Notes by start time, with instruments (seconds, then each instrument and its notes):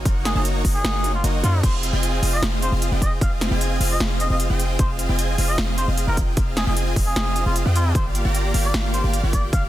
0.05 808-style bass F#1, supersaw synth A#3 D#4 F#4 C#5 F#5, kick, closed hi-hat
0.25 muted trumpet G#4, snare, closed hi-hat
0.35 808-style bass F#1, supersaw synth A#3 D#4 F#4 C#5 A#5, muted trumpet G#4
0.45 closed hi-hat
0.65 808-style bass F#1, supersaw synth A#3 D#4 F#4 C#5 F#5, kick, open hi-hat
0.75 muted trumpet G#4
0.84 808-style bass F#1, supersaw synth A#3 D#4 F#4 C#5 F#5, snare, closed hi-hat
1.04 closed hi-hat
1.15 muted trumpet F4
1.24 808-style bass F#1, supersaw synth A#3 D#4 F#4 C#5 D#5, closed hi-hat
1.43 808-style bass F#2, supersaw synth A#3 D#4 F#4 C#5 F#5, muted trumpet F4, closed hi-hat
1.63 808-style bass F1, supersaw synth C4 F4 G#4 D#5 F5, muted trumpet C5, kick, closed hi-hat, crash
1.83 closed hi-hat
1.93 808-style bass F1, supersaw synth C4 F4 G#4 D#5 G#5
2.03 closed hi-hat
2.22 808-style bass F1, supersaw synth C4 F4 G#4 D#5 F5, open hi-hat
2.33 muted trumpet D#5
2.42 808-style bass F1, supersaw synth C4 F4 G#4 D#5 F5, snare, closed hi-hat
2.62 muted trumpet C5, closed hi-hat
2.72 808-style bass F1, supersaw synth C4 F4 G#4 D#5 F5
2.82 closed hi-hat
2.92 808-style bass F1, supersaw synth C4 F4 G#4 D#5 G5
3.02 muted trumpet D#5, kick, closed hi-hat
3.21 808-style bass F1, supersaw synth C4 F4 G#4 D#5 F5, muted trumpet F5, kick, closed hi-hat
3.41 snare, closed hi-hat
3.51 808-style bass F1, supersaw synth C4 F4 G#4 D#5 G#5
3.61 closed hi-hat
3.80 808-style bass F1, supersaw synth C4 F4 G#4 D#5 F5, open hi-hat
3.91 muted trumpet D#5
4.00 808-style bass F1, supersaw synth C4 F4 G#4 D#5 F5, snare, closed hi-hat
4.20 muted trumpet D#5, closed hi-hat
4.30 808-style bass F1, supersaw synth C4 F4 G#4 D#5 F5, muted trumpet D#5
4.40 closed hi-hat
4.50 808-style bass F1, supersaw synth C4 F4 G#4 D#5 G5
4.60 closed hi-hat
4.79 808-style bass F1, supersaw synth C4 F4 G#4 D#5 F5, muted trumpet C5, kick, closed hi-hat
4.99 closed hi-hat
5.09 808-style bass F1, supersaw synth C4 F4 G#4 D#5 G#5
5.19 closed hi-hat
5.38 808-style bass F1, supersaw synth C4 F4 G#4 D#5 F5, open hi-hat
5.48 muted trumpet D#5
5.58 808-style bass F1, supersaw synth C4 F4 G#4 D#5 F5, snare, closed hi-hat
5.78 muted trumpet C5, closed hi-hat
5.88 808-style bass F1, supersaw synth C4 F4 G#4 D#5 F5
5.98 closed hi-hat
6.07 808-style bass F1, supersaw synth C4 F4 G#4 D#5 G5, muted trumpet A#4
6.17 kick, closed hi-hat
6.37 808-style bass F1, supersaw synth C4 F4 G#4 D#5 F5, kick, closed hi-hat
6.57 muted trumpet G#4, snare, closed hi-hat
6.67 808-style bass F1, supersaw synth C4 F4 G#4 D#5 G#5, muted trumpet G#4
6.77 closed hi-hat
6.96 808-style bass F1, supersaw synth C4 F4 G#4 D#5 F5, kick, open hi-hat
7.07 muted trumpet G#4
7.16 808-style bass F1, supersaw synth C4 F4 G#4 D#5 F5, snare, closed hi-hat
7.36 closed hi-hat
7.46 808-style bass F1, supersaw synth C4 F4 G#4 D#5 F5, muted trumpet F4
7.56 closed hi-hat
7.65 808-style bass F2, supersaw synth C4 F4 G#4 D#5 G5
7.75 muted trumpet F4, closed hi-hat
7.95 808-style bass G1, supersaw synth A#3 F4 G4 D5 F5, muted trumpet C5, kick, closed hi-hat
8.15 closed hi-hat
8.25 808-style bass G1, supersaw synth A#3 F4 G4 D5 A#5
8.35 closed hi-hat
8.54 808-style bass G1, supersaw synth A#3 F4 G4 D5 F5, open hi-hat
8.65 muted trumpet D5
8.74 808-style bass G1, supersaw synth A#3 F4 G4 D5 F5, snare, closed hi-hat
8.93 muted trumpet C5, closed hi-hat
9.04 808-style bass G1, supersaw synth A#3 F4 G4 D5 F5
9.13 closed hi-hat
9.23 808-style bass G1, supersaw synth A#3 F4 G4 D5 G5
9.33 muted trumpet D5, kick, closed hi-hat
9.53 808-style bass G1, supersaw synth A#3 F4 G4 D5 F5, muted trumpet F5, kick, closed hi-hat